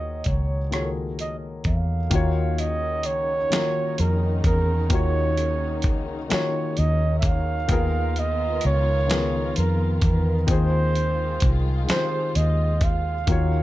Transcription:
Already playing: fingered electric bass D#2, grand piano D#3 A#3 F4 F#4 G#4 C#5, flugelhorn D#5
0.24 fingered electric bass C#2, flugelhorn C#5, kick, closed hi-hat
0.71 grand piano D#3 A#3 F4 F#4 G#4, flugelhorn C#5, cross-stick, closed hi-hat
0.76 grand piano A4
0.82 grand piano A#4
1.19 flugelhorn D#5, closed hi-hat
1.64 fingered electric bass E2, flugelhorn F5, kick, closed hi-hat
2.10 fingered electric bass D#2, string section C#3 D#3 D#4, grand piano D#3 A#3 F4 F#4, kick, closed hi-hat
2.15 grand piano C#5
2.58 flugelhorn D#5, closed hi-hat
3.03 fingered electric bass C#2, flugelhorn C#5, closed hi-hat
3.50 grand piano D#3 A#3 F4 F#4, snare, closed hi-hat
3.55 grand piano A#4
3.98 fingered electric bass F2, flugelhorn A#4, closed hi-hat
4.44 fingered electric bass E2, flugelhorn A#4, kick, closed hi-hat
4.89 fingered electric bass D#2, grand piano D#3 A#3 F4 F#4, flugelhorn C#5, kick, closed hi-hat
4.95 grand piano C#5
5.37 closed hi-hat
5.82 fingered electric bass C#2, kick, closed hi-hat
6.29 grand piano D#3 A#3 F4 F#4, flugelhorn C#5, muted fingered electric bass stroke, snare, closed hi-hat
6.34 grand piano C#5
6.77 fingered electric bass D#2, flugelhorn D#5, closed hi-hat
7.19 flugelhorn E5, kick, closed hi-hat
7.26 flugelhorn F5
7.68 fingered electric bass D#2, grand piano D#3 B3 F4 G#4, string section D#3 B3 F4 A#4, kick, closed hi-hat
7.73 grand piano A#4
8.16 flugelhorn D#5, closed hi-hat
8.61 fingered electric bass C#2, closed hi-hat
8.66 flugelhorn C#5
9.07 grand piano D#3 B3 F4 G#4, snare, closed hi-hat
9.12 grand piano A#4
9.56 fingered electric bass F2, flugelhorn A#4, closed hi-hat
10.02 fingered electric bass E2, flugelhorn A#4, kick, closed hi-hat
10.47 fingered electric bass D#2, grand piano D#3 C4 F4 G#4, string section G#3 F4, flugelhorn C5, kick, closed hi-hat
10.52 grand piano C5
10.95 closed hi-hat
11.40 fingered electric bass C2, kick, closed hi-hat
11.87 grand piano D#3 C4 F4 G4, flugelhorn C5, snare, closed hi-hat
11.92 grand piano C5
11.97 grand piano G#4
12.35 fingered electric bass D#2, flugelhorn D#5, closed hi-hat
12.81 flugelhorn F5, kick, closed hi-hat
13.27 fingered electric bass D#2, string section C#3 D#3 D#4, grand piano D#3 A#3 F4 F#4, kick, closed hi-hat
13.32 grand piano C#5

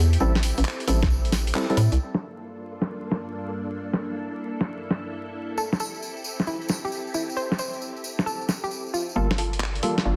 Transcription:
Already playing: fm bass E2, string machine C4 E4 G4 A4
0.13 closed hi-hat, tambourine
0.20 fm bass A1, synth stab G3 C4 E4 A4, tambourine
0.35 snare, closed hi-hat, tambourine
0.43 open hi-hat, tambourine
0.57 fm bass A1, closed hi-hat, tambourine
0.65 clap, tambourine
0.80 closed hi-hat, tambourine
0.88 fm bass A1, synth stab G3 C4 E4 A4, open hi-hat, tambourine
1.03 kick, snare, closed hi-hat
1.10 tambourine
1.25 closed hi-hat, tambourine
1.32 snare, open hi-hat, tambourine
1.47 closed hi-hat, tambourine
1.54 synth stab G3 C4 E4 A4, clap, tambourine
1.70 synth stab G3 C4 E4 A4, closed hi-hat, tambourine
1.77 fm bass A2, open hi-hat, tambourine
1.92 fm bass C2, closed hi-hat, tambourine
2.00 string machine G2 A#3 D4 F4 A4
2.15 snare
2.82 snare
3.11 snare
3.79 string machine E4
3.94 snare
4.61 snare
4.91 snare
5.58 string machine C4 G4, synth pluck A4, tambourine
5.73 snare, tambourine
5.80 synth pluck A4, tambourine
5.94 tambourine
6.02 tambourine
6.17 tambourine
6.24 tambourine
6.39 snare, tambourine
6.47 synth pluck E4, tambourine
6.61 tambourine
6.68 snare, tambourine
6.85 synth pluck G4, tambourine
6.92 tambourine
7.07 tambourine
7.14 synth pluck E4, tambourine
7.30 tambourine
7.37 synth pluck C5, tambourine
7.52 snare, tambourine
7.59 synth pluck C5, tambourine
7.73 tambourine
7.82 tambourine
7.96 tambourine
8.04 tambourine
8.19 snare, tambourine
8.26 synth pluck A4, tambourine
8.41 tambourine
8.49 snare, tambourine
8.64 synth pluck G4, tambourine
8.71 tambourine
8.86 tambourine
8.94 synth pluck F4, tambourine
9.09 tambourine
9.16 fm bass G1, synth stab G3 A#3 F4 A4, synth pluck F4 A4, string machine A4 A#4 D5 F5, riser
9.31 snare, closed hi-hat
9.38 synth pluck F4 A4, open hi-hat
9.53 closed hi-hat
9.61 clap
9.75 closed hi-hat
9.83 synth stab G3 A#3 F4 A4, open hi-hat
9.98 snare, closed hi-hat
10.05 fm bass G1, synth pluck D4 F4

